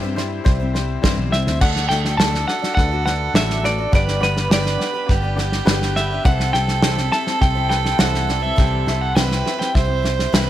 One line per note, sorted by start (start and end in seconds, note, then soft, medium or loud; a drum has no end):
0.00 1.58 C2 medium
0.00 0.39 G2 medium
0.00 1.58 C3 medium
0.00 0.15 G3 medium
0.00 0.16 C4 medium
0.00 0.16 E4 medium
0.00 0.17 E4 medium
0.00 0.16 C5 loud
0.00 0.17 C5 medium
0.00 1.61 D5 medium
0.00 0.99 G5 medium
0.05 0.15 G3 medium
0.05 0.17 C4 medium
0.15 0.37 G3 medium
0.15 0.60 G3 medium
0.15 0.37 C4 medium
0.15 0.61 C4 medium
0.15 0.37 E4 medium
0.15 0.59 E4 medium
0.15 0.37 C5 loud
0.15 snare soft
0.19 0.58 C5 medium
0.44 0.97 C2 medium
0.44 0.65 G3 loud
0.44 0.65 C4 medium
0.44 0.66 E4 loud
0.44 0.66 C5 loud
0.44 kick loud
0.44 snare soft
0.60 0.74 G3 soft
0.60 0.75 C4 medium
0.60 0.75 E4 medium
0.60 0.74 C5 medium
0.73 0.95 G3 medium
0.73 1.03 G3 medium
0.73 0.94 C4 medium
0.73 1.04 C4 medium
0.73 0.95 E4 medium
0.73 1.04 E4 medium
0.73 0.95 C5 medium
0.73 snare soft
0.78 1.05 C5 medium
1.01 1.17 G2 medium
1.01 1.32 C3 medium
1.01 1.33 E3 medium
1.01 1.23 G3 medium
1.01 1.31 G3 medium
1.01 1.23 C4 medium
1.01 1.33 C4 medium
1.01 1.23 E4 medium
1.01 1.24 C5 medium
1.01 kick medium
1.01 snare loud
1.05 1.33 E4 medium
1.05 1.34 C5 loud
1.18 1.31 B1 medium
1.30 1.46 C2 medium
1.30 1.52 G3 medium
1.30 1.47 G3 medium
1.30 1.52 C4 medium
1.30 1.52 E4 medium
1.30 1.52 C5 medium
1.30 1.59 E5 medium
1.30 snare soft
1.34 1.48 C4 medium
1.34 1.47 E4 medium
1.34 1.46 C5 medium
1.47 1.60 D2 medium
1.47 1.61 G3 medium
1.47 1.62 C4 medium
1.47 1.62 E4 medium
1.47 1.62 C5 medium
1.47 snare soft
1.60 3.89 D2 medium
1.60 1.87 D2 medium
1.60 1.90 D3 medium
1.60 3.89 D3 medium
1.60 1.81 A3 medium
1.60 1.89 A3 medium
1.60 1.82 D4 medium
1.60 1.90 D4 medium
1.60 1.82 F#4 medium
1.60 1.91 F#4 medium
1.60 3.95 A4 medium
1.60 1.82 D5 loud
1.60 1.91 D5 medium
1.60 1.88 F#5 medium
1.60 kick loud
1.60 snare soft
1.60 crash medium
1.76 snare soft
1.89 2.16 D2 medium
1.89 2.11 A3 medium
1.89 2.19 A3 medium
1.89 2.11 D4 medium
1.89 2.20 D4 medium
1.89 2.11 F#4 medium
1.89 2.11 E5 loud
1.89 2.16 G5 medium
1.89 snare soft
1.93 2.20 F#4 medium
1.93 2.20 D5 medium
2.05 snare soft
2.17 2.44 D2 medium
2.17 2.34 D3 medium
2.17 2.40 A3 medium
2.17 2.34 A3 medium
2.17 2.40 D4 medium
2.17 2.35 D4 medium
2.17 2.40 F#4 medium
2.17 2.34 F#4 medium
2.17 2.40 D5 medium
2.17 2.32 D5 medium
2.17 2.47 A5 medium
2.17 snare loud
2.33 2.64 D4 soft
2.33 2.63 F#4 soft
2.33 2.61 D5 medium
2.33 snare soft
2.48 2.69 A3 medium
2.48 2.69 D4 medium
2.48 2.69 F#4 medium
2.48 2.69 D5 medium
2.48 2.73 F#5 medium
2.48 snare soft
2.62 2.93 D4 soft
2.62 2.91 F#4 soft
2.62 2.90 D5 medium
2.62 snare soft
2.75 3.28 D2 medium
2.75 2.98 A3 medium
2.75 2.98 D4 medium
2.75 2.98 F#4 medium
2.75 2.98 B4 medium
2.75 3.04 F#5 loud
2.75 kick medium
2.75 snare soft
2.91 3.05 D4 soft
2.91 3.06 F#4 soft
2.91 3.06 D5 soft
3.05 3.26 A3 medium
3.05 3.34 A3 medium
3.05 3.26 D4 medium
3.05 3.35 D4 medium
3.05 3.26 F#4 medium
3.05 3.35 F#4 medium
3.05 3.26 B4 medium
3.05 3.36 D5 medium
3.05 3.35 F#5 medium
3.05 snare soft
3.33 3.85 A1 medium
3.33 3.64 D3 medium
3.33 3.55 A3 medium
3.33 3.61 A3 medium
3.33 3.55 D4 medium
3.33 3.63 D4 medium
3.33 3.55 F#4 medium
3.33 3.63 F#4 medium
3.33 3.55 D5 loud
3.33 3.65 E5 medium
3.33 snare loud
3.38 3.65 D5 medium
3.50 snare soft
3.62 3.78 A3 medium
3.62 3.84 A3 medium
3.62 3.84 D4 medium
3.62 3.79 D4 medium
3.62 3.84 F#4 medium
3.62 3.79 F#4 medium
3.62 3.84 B4 medium
3.62 3.94 D5 medium
3.62 3.77 D5 medium
3.62 snare soft
3.78 3.93 D4 soft
3.78 3.94 F#4 soft
3.78 3.93 D5 medium
3.91 6.21 G1 medium
3.91 4.19 G1 medium
3.91 6.21 G2 medium
3.91 4.20 G3 medium
3.91 4.13 B3 medium
3.91 4.13 D4 medium
3.91 4.22 D4 medium
3.91 4.13 G4 medium
3.91 4.23 G4 medium
3.91 4.51 B4 medium
3.91 4.23 B4 medium
3.91 4.13 D5 loud
3.91 4.23 D5 medium
3.91 kick loud
3.91 snare soft
4.08 snare soft
4.20 4.47 G1 medium
4.20 4.50 G3 medium
4.20 4.41 B3 loud
4.20 4.42 D4 medium
4.20 4.51 D4 medium
4.20 4.42 G4 medium
4.20 4.52 B4 medium
4.20 4.42 D5 loud
4.20 snare soft
4.24 4.51 G4 medium
4.24 4.52 B4 medium
4.37 snare soft
4.49 4.76 G1 medium
4.49 4.66 G3 medium
4.49 4.70 B3 medium
4.49 4.71 D4 medium
4.49 4.66 D4 medium
4.49 4.71 G4 medium
4.49 5.12 B4 loud
4.49 4.71 D5 medium
4.49 snare loud
4.53 4.66 G4 loud
4.53 4.64 B4 medium
4.53 5.64 D5 medium
4.66 4.96 D4 soft
4.66 4.94 G4 soft
4.66 4.93 B4 medium
4.66 snare soft
4.78 4.99 B3 medium
4.78 5.00 D4 medium
4.78 5.00 G4 medium
4.78 5.00 D5 medium
4.78 snare soft
4.94 5.24 D4 soft
4.94 5.23 G4 medium
4.94 5.21 B4 medium
5.06 5.60 G1 loud
5.06 5.28 B3 medium
5.06 5.28 D4 medium
5.06 5.28 G4 medium
5.06 5.28 D5 medium
5.06 kick medium
5.06 snare soft
5.11 6.28 G4 medium
5.22 5.38 D4 soft
5.22 5.38 G4 medium
5.22 5.37 B4 medium
5.35 5.65 G3 medium
5.35 5.57 B3 medium
5.35 5.57 D4 medium
5.35 5.66 D4 medium
5.35 5.57 G4 medium
5.35 5.58 D5 medium
5.35 snare soft
5.40 5.67 G4 medium
5.40 5.67 B4 medium
5.52 snare soft
5.65 6.18 G1 medium
5.65 5.95 G3 medium
5.65 5.86 B3 loud
5.65 5.87 D4 loud
5.65 5.96 D4 medium
5.65 5.87 G4 loud
5.65 5.97 G4 medium
5.65 5.87 B4 loud
5.65 snare loud
5.69 5.97 B4 loud
5.82 snare soft
5.95 6.11 G3 medium
5.95 6.16 B3 medium
5.95 6.16 D4 medium
5.95 6.11 D4 medium
5.95 6.16 G4 medium
5.95 6.16 E5 medium
5.95 6.25 E5 medium
5.95 snare soft
5.99 6.11 G4 medium
5.99 6.09 B4 medium
6.11 6.26 D4 medium
6.11 6.26 G4 soft
6.11 6.25 B4 medium
6.24 8.53 C2 medium
6.24 6.51 C2 loud
6.24 8.53 C3 medium
6.24 6.54 C3 medium
6.24 6.54 E3 medium
6.24 6.52 G3 medium
6.24 6.45 C4 medium
6.24 6.53 C4 medium
6.24 6.45 E4 medium
6.24 6.54 E4 medium
6.24 6.45 G4 medium
6.24 9.17 A4 loud
6.24 6.55 C5 medium
6.24 6.45 E5 loud
6.24 6.52 F#5 loud
6.24 kick loud
6.24 snare soft
6.40 snare soft
6.53 6.80 C2 medium
6.53 6.83 G3 medium
6.53 6.74 C4 medium
6.53 6.83 C4 medium
6.53 6.74 E4 medium
6.53 6.83 E4 medium
6.53 6.74 G4 medium
6.53 7.08 G5 loud
6.53 6.74 G5 loud
6.53 snare soft
6.68 snare soft
6.81 7.09 C2 medium
6.81 6.98 C3 medium
6.81 6.98 E3 medium
6.81 6.98 G3 medium
6.81 7.03 C4 medium
6.81 6.98 C4 medium
6.81 7.03 E4 medium
6.81 6.98 E4 medium
6.81 7.03 G4 medium
6.81 6.96 C5 medium
6.81 7.03 G5 medium
6.81 snare loud
6.98 7.29 G3 soft
6.98 7.28 C4 soft
6.98 7.27 E4 medium
6.98 7.25 C5 medium
6.98 snare soft
7.11 7.32 C4 medium
7.11 7.33 E4 medium
7.11 7.33 G4 medium
7.11 7.33 E5 medium
7.11 7.41 A5 loud
7.11 snare soft
7.27 7.57 G3 soft
7.27 7.56 C4 soft
7.27 7.55 E4 medium
7.27 7.54 C5 medium
7.27 snare soft
7.40 7.93 C2 loud
7.40 7.61 C4 medium
7.40 7.61 E4 medium
7.40 7.62 G4 medium
7.40 7.62 E5 medium
7.40 7.68 G5 loud
7.40 kick medium
7.40 snare soft
7.55 7.68 G3 soft
7.55 7.69 C4 soft
7.55 7.71 E4 soft
7.55 7.70 C5 medium
7.69 7.98 G3 medium
7.69 7.91 C4 medium
7.69 7.99 C4 medium
7.69 7.91 E4 medium
7.69 7.99 E4 medium
7.69 7.91 G4 medium
7.69 7.91 B4 medium
7.69 7.99 C5 medium
7.69 7.83 G5 medium
7.69 snare soft
7.85 8.00 G5 loud
7.85 snare soft
7.98 8.51 C2 medium
7.98 8.28 C3 medium
7.98 8.28 E3 medium
7.98 8.26 G3 medium
7.98 8.20 C4 medium
7.98 8.28 C4 medium
7.98 8.20 E4 medium
7.98 8.28 E4 medium
7.98 8.20 G4 medium
7.98 8.21 A4 loud
7.98 8.29 C5 medium
7.98 8.41 F#5 medium
7.98 snare loud
8.15 snare soft
8.27 8.43 G3 medium
8.27 8.49 C4 medium
8.27 8.43 C4 medium
8.27 8.49 E4 medium
8.27 8.42 E4 medium
8.27 8.50 G4 medium
8.27 8.40 C5 medium
8.27 8.50 D5 medium
8.27 snare soft
8.42 8.56 G3 soft
8.42 8.56 C4 soft
8.42 8.57 E4 medium
8.42 8.57 C5 medium
8.42 9.01 E5 medium
8.56 8.84 C2 medium
8.56 10.50 C2 medium
8.56 8.86 C3 medium
8.56 10.50 C3 medium
8.56 8.86 E3 medium
8.56 8.85 G3 medium
8.56 8.86 C4 medium
8.56 8.79 C4 medium
8.56 8.87 E4 medium
8.56 8.79 E4 medium
8.56 8.79 G4 medium
8.56 8.87 C5 medium
8.56 8.79 G5 medium
8.56 kick loud
8.56 snare soft
8.86 9.13 C2 medium
8.86 9.15 G3 medium
8.86 9.16 C4 medium
8.86 9.08 C4 medium
8.86 9.08 E4 medium
8.86 9.16 E4 medium
8.86 9.08 G4 medium
8.86 9.17 C5 medium
8.86 9.08 E5 loud
8.86 snare soft
9.01 9.15 F#5 medium
9.15 9.42 C2 medium
9.15 9.31 C3 medium
9.15 9.31 E3 medium
9.15 9.31 G3 medium
9.15 9.30 C4 medium
9.15 9.37 C4 medium
9.15 9.37 E4 medium
9.15 9.29 E4 medium
9.15 9.38 G4 medium
9.15 9.71 B4 loud
9.15 9.29 C5 medium
9.15 9.38 F#5 medium
9.15 9.58 G5 medium
9.15 snare loud
9.30 9.61 G3 soft
9.30 9.59 C4 soft
9.30 9.58 E4 soft
9.30 9.57 C5 medium
9.30 snare soft
9.45 9.66 C4 medium
9.45 9.66 E4 medium
9.45 9.66 G4 medium
9.45 9.66 E5 medium
9.45 snare soft
9.58 9.89 G3 soft
9.58 9.88 C4 soft
9.58 9.87 E4 soft
9.58 9.86 C5 medium
9.58 9.75 G5 medium
9.58 snare soft
9.74 10.26 C2 loud
9.74 9.95 C4 medium
9.74 9.95 E4 medium
9.74 9.96 G4 medium
9.74 10.35 C5 loud
9.74 10.50 E5 loud
9.74 9.96 E5 medium
9.74 kick medium
9.74 snare soft
9.87 10.01 G3 soft
9.87 10.03 C4 soft
9.87 10.03 E4 soft
9.87 10.03 C5 soft
10.02 10.32 G3 medium
10.02 10.24 C4 medium
10.02 10.32 C4 medium
10.02 10.25 E4 medium
10.02 10.32 E4 medium
10.02 10.25 G4 medium
10.02 10.33 C5 medium
10.02 10.25 E5 medium
10.02 snare soft
10.19 snare soft
10.32 10.50 C2 medium
10.32 10.50 C3 medium
10.32 10.50 E3 medium
10.32 10.50 G3 medium
10.32 10.50 C4 medium
10.32 10.50 E4 medium
10.32 10.50 G4 medium
10.32 10.50 B4 loud
10.32 10.50 C5 medium
10.32 10.50 E5 loud
10.32 snare loud